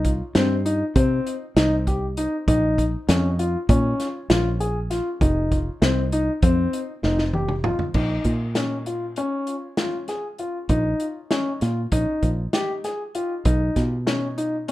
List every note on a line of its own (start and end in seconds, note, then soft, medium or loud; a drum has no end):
0.00 0.21 C2 loud
0.05 kick medium
0.05 closed hi-hat medium
0.35 0.82 G2 medium
0.35 0.52 C4 medium
0.35 snare loud
0.35 closed hi-hat medium
0.65 0.83 D#4 medium
0.65 closed hi-hat medium
0.96 1.19 C3 loud
0.96 1.30 C4 medium
0.96 kick loud
0.96 closed hi-hat medium
1.27 closed hi-hat medium
1.56 2.26 C2 medium
1.56 1.74 D#4 medium
1.56 snare loud
1.56 closed hi-hat medium
1.87 2.04 G4 medium
1.87 kick medium
1.87 closed hi-hat medium
2.17 2.35 D#4 medium
2.17 closed hi-hat medium
2.48 2.94 A#1 medium
2.48 2.82 D#4 medium
2.48 kick loud
2.48 closed hi-hat medium
2.78 kick medium
2.78 closed hi-hat medium
3.09 3.55 F2 loud
3.09 3.26 C#4 medium
3.09 snare medium
3.09 closed hi-hat medium
3.39 3.56 F4 medium
3.39 closed hi-hat medium
3.69 3.92 A#2 loud
3.69 4.04 C#4 medium
3.69 kick loud
3.69 closed hi-hat medium
4.00 snare soft
4.00 closed hi-hat medium
4.30 5.00 A#1 loud
4.30 4.47 F4 medium
4.30 snare loud
4.30 closed hi-hat medium
4.60 4.78 G#4 medium
4.60 closed hi-hat soft
4.90 5.08 F4 medium
4.90 snare soft
4.90 closed hi-hat medium
5.21 5.68 F1 loud
5.21 5.55 D#4 medium
5.21 kick medium
5.21 closed hi-hat medium
5.52 kick medium
5.52 closed hi-hat medium
5.82 6.29 C2 loud
5.82 5.99 C4 medium
5.82 snare loud
5.82 closed hi-hat medium
6.12 6.30 D#4 medium
6.12 closed hi-hat medium
6.42 6.66 F2 medium
6.42 6.77 C4 medium
6.42 kick loud
6.42 closed hi-hat medium
6.73 closed hi-hat medium
7.03 7.74 F1 medium
7.03 7.21 D#4 medium
7.03 snare medium
7.18 snare medium
7.33 7.51 G4 medium
7.33 high tom medium
7.49 mid tom medium
7.64 7.82 F4 medium
7.64 mid tom medium
7.79 floor tom medium
7.94 8.18 A#1 medium
7.94 8.29 D#4 medium
7.94 kick medium
7.94 crash medium
8.24 9.19 A#2 medium
8.24 kick medium
8.24 closed hi-hat medium
8.55 8.73 C#4 medium
8.55 snare medium
8.55 closed hi-hat medium
8.86 9.04 F4 medium
8.86 closed hi-hat medium
9.16 9.52 C#4 medium
9.16 closed hi-hat medium
9.47 closed hi-hat medium
9.77 9.95 F4 medium
9.77 snare loud
9.77 closed hi-hat medium
10.08 10.26 G#4 medium
10.08 snare soft
10.08 closed hi-hat soft
10.38 10.57 F4 medium
10.38 closed hi-hat soft
10.69 10.93 A#1 loud
10.69 11.04 D#4 medium
10.69 kick loud
10.69 closed hi-hat medium
11.00 closed hi-hat soft
11.31 11.48 C#4 medium
11.31 snare medium
11.31 closed hi-hat medium
11.61 11.85 A#2 medium
11.61 11.79 F4 medium
11.61 snare soft
11.61 closed hi-hat medium
11.92 12.04 A#1 loud
11.92 12.27 D#4 medium
11.92 kick loud
11.92 closed hi-hat medium
12.23 12.46 A#1 medium
12.23 kick medium
12.23 closed hi-hat medium
12.53 12.71 G4 medium
12.53 snare loud
12.53 closed hi-hat medium
12.84 13.02 G#4 medium
12.84 snare soft
12.84 closed hi-hat medium
13.15 13.32 F4 medium
13.15 closed hi-hat medium
13.45 13.69 B1 loud
13.45 13.80 D#4 medium
13.45 kick loud
13.45 closed hi-hat medium
13.76 14.70 B2 medium
13.76 kick medium
13.76 snare soft
13.76 closed hi-hat medium
14.07 14.24 C#4 medium
14.07 snare loud
14.07 closed hi-hat medium
14.38 14.55 D#4 medium
14.38 closed hi-hat medium
14.68 14.72 C#4 medium
14.68 closed hi-hat medium